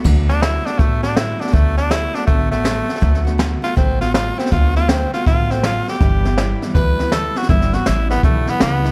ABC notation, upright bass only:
X:1
M:4/4
L:1/8
Q:"Swing" 1/4=161
K:D
V:1 name="Upright bass" clef=bass
D,,4 A,,,4 | D,,4 A,,,4 | D,,4 A,,,4 | D,,4 A,,,4 |
G,,,4 D,,4 | G,,,2 A,,,2 B,,,2 C,,2 |]